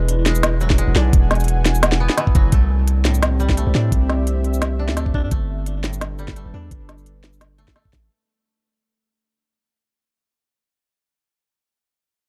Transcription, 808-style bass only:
Already playing: E1
0.88 E1
0.96 B1
1.13 E1
2.35 F#1
2.53 C2
3.67 C2
3.75 A2
3.92 C2
4.89 D2
5.24 A2
5.32 G1
6.46 G1
6.54 E2
6.71 G1
7.93 A1

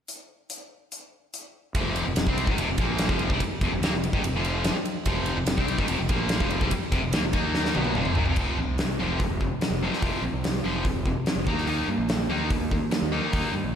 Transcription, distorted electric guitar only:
1.75 F2 C3 F3
2.07 F2 C3
2.18 F2 C3
2.28 C3 G3 C4
2.49 G#2 D#3
2.60 F2 C3
2.71 F2 C3
2.79 A#2 F3 A#3
3.09 F2 C3 F3
3.33 C3 G3
3.42 muted distorted electric guitar stroke
3.63 F2 C3
3.73 F2 C3
3.84 D#3 A#3
3.94 F2 C3
4.14 G#2 D#3
4.24 F2 C3
4.36 F2 C3 F3
4.76 muted distorted electric guitar stroke
5.07 F2 C3 F3
5.37 F2 C3
5.48 F2 C3
5.57 C3 G3 C4
5.78 G#2 D#3
5.89 F2 C3
6.00 F2 C3
6.09 A#2 F3 A#3
6.40 F2 C3 F3
6.61 C3 G3
6.73 muted distorted electric guitar stroke
6.92 F2 C3
7.03 F2 C3
7.14 D#3 A#3
7.25 F2 C3
7.34 D#3 A#3 D#4
7.75 B2 F#3 B3
7.97 F2 C3 F3
8.17 G#2 D#3
8.28 F2 C3
8.39 F2 C3 F3
8.60 F2 C3
8.80 F2 C3
8.99 F2 C3 F3
9.21 F2 C3
9.42 F2 C3
9.62 F2 C3
9.82 F2 C3 F3
10.02 F2 C3 F3
10.23 F2 C3
10.44 F2 C3
10.64 F2 C3 F3
10.85 F2 C3
11.07 F2 C3
11.27 F2 C3
11.47 D#3 A#3 D#4
11.67 D#3 A#3 D#4
11.89 D#3 A#3
12.10 D#3 A#3
12.30 D#3 A#3 D#4
12.52 D#3 A#3
12.71 D#3 A#3
12.91 D#3 A#3
13.12 D#3 A#3 D#4
13.32 D#3 A#3 D#4
13.54 D#3 A#3

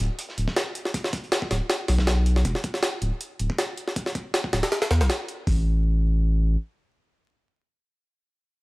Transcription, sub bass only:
0.00 D1
0.38 D1
1.51 D1
1.89 B1
2.45 E1
3.02 D1
3.40 D1
4.53 D1
4.91 E2
5.01 B1
5.47 A1

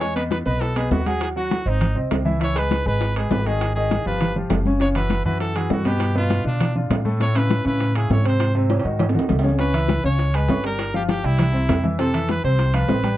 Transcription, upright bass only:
Already playing: E2
0.46 B1
0.91 D#2
1.66 G#1
1.96 C2
2.11 C#2
2.86 G#1
3.30 G#1
4.06 G1
4.50 F#1
5.25 F#2
5.70 G2
6.45 B2
6.90 A2
7.66 A2
8.10 G#2
8.85 G#2
9.15 D#2
9.30 C#2
10.04 C#2
10.49 G1
11.24 C2
11.69 F2
12.44 C2
12.89 A1

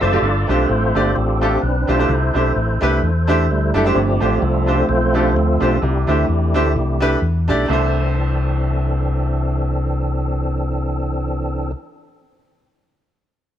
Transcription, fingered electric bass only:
0.01 F#1
0.22 G1
0.49 B1
0.69 A1
0.95 G1
1.16 A1
1.63 B1
1.88 B1
2.09 C2
2.35 B1
2.56 A1
2.82 C2
3.02 E2
3.49 D2
3.74 F#1
3.96 G1
4.21 A1
4.42 C2
4.89 B1
5.36 D2
5.61 B1
5.82 C2
6.07 D2
6.29 E2
6.54 D2
6.75 C2
7.22 E2
7.48 B1
7.70 C2

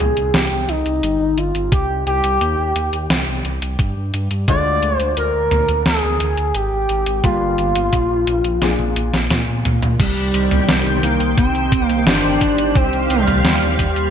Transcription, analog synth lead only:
Already playing: G#4
0.34 G4
0.68 D#4
1.38 F4
1.72 G4
2.07 G4
4.48 D5
4.97 C5
5.18 A#4
5.87 G#4
6.56 G4
7.25 F4
10.00 G3
11.03 A#3
11.38 C4
11.87 A#3
12.07 D4
12.76 C4
13.11 G3
13.45 G3
13.80 G3

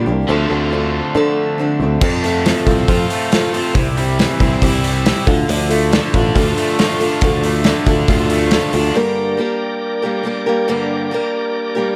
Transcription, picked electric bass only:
0.07 C2
0.29 D2
0.50 D2
1.15 D3
1.80 D2
2.02 F2
2.66 C2
2.88 F2
3.75 C2
4.40 C2
4.62 C2
5.27 D2
5.49 D2
6.14 A1
6.35 D2
7.22 D2
7.87 D2
8.09 D2
8.74 D2

